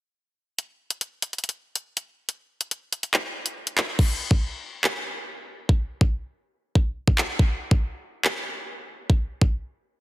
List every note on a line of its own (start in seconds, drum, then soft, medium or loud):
0.59 closed hi-hat medium
0.90 closed hi-hat medium
1.01 closed hi-hat medium
1.22 closed hi-hat medium
1.33 closed hi-hat soft
1.38 closed hi-hat soft
1.44 closed hi-hat medium
1.49 closed hi-hat medium
1.75 closed hi-hat medium
1.97 closed hi-hat medium
2.29 closed hi-hat medium
2.61 closed hi-hat medium
2.71 closed hi-hat medium
2.93 closed hi-hat medium
3.03 closed hi-hat medium
3.14 clap medium
3.46 closed hi-hat medium
3.67 closed hi-hat medium
3.78 clap loud
3.78 closed hi-hat medium
3.99 kick loud
3.99 crash loud
4.31 kick medium
4.84 clap loud
5.69 kick loud
6.01 kick medium
6.75 kick medium
7.08 kick loud
7.18 clap loud
7.39 kick loud
7.71 kick medium
8.24 clap loud
9.10 kick loud
9.42 kick medium